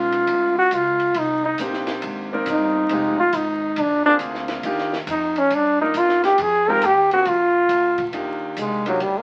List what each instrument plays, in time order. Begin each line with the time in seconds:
Already playing: upright bass B1, grand piano G#3 B3 C#4 D#4 F4, trombone F4
0.12 ride
0.27 upright bass D2, ride
0.58 trombone F#4, muted upright bass stroke
0.71 upright bass C#2, trombone F4, hi-hat pedal, ride
0.99 ride
1.14 upright bass C2, ride
1.19 trombone D#4
1.45 trombone D#4
1.58 upright bass A#1, grand piano A#3 C4 D4 D#4 G4, hi-hat pedal, ride
1.73 snare
1.87 snare, ride
2.02 upright bass G#1, ride
2.32 grand piano A#3 C4 D#4 A#4 D5
2.46 upright bass G1, hi-hat pedal, ride
2.50 trombone D#4
2.89 upright bass F1, grand piano G#3 C4 D#4 F4 G4, ride
3.19 trombone F4
3.32 upright bass G#1, trombone D#4, hi-hat pedal, ride
3.76 upright bass A#1, ride
3.81 trombone D4
4.06 grand piano A#3 C4 D4 F4 G#4, trombone D4
4.19 upright bass D2, hi-hat pedal, ride
4.34 snare
4.48 snare, ride
4.63 upright bass D#2, grand piano A#3 D4 D#4 F4 G4, ride
4.78 snare
4.93 snare
5.07 upright bass F2, hi-hat pedal, ride
5.11 trombone D#4
5.36 trombone C#4, ride
5.50 upright bass G2, trombone D4, ride
5.81 grand piano A#3 D4 D#4 F4 A#4, trombone D#4
5.94 upright bass F#2, trombone F4, hi-hat pedal, ride
6.09 snare
6.23 trombone G4, snare, ride
6.38 upright bass F2, trombone G#4, ride
6.68 grand piano G#3 C4 D#4 F4 G4, trombone A#4
6.81 upright bass D#2, trombone G4, hi-hat pedal, ride
7.11 grand piano A#3 C4 D4 F4 G#4, trombone F#4, ride
7.25 upright bass A#1, trombone F4, ride
7.69 upright bass D2, hi-hat pedal, ride
7.98 kick, ride
8.13 upright bass D#2, grand piano A#3 D4 D#4 F4 G4, ride
8.56 upright bass C2, trombone G#3, hi-hat pedal, ride
8.86 trombone F#3, grand piano A#3 D4 D#4 F4 G4, ride
9.00 upright bass D2, trombone G3, ride
9.18 trombone A#3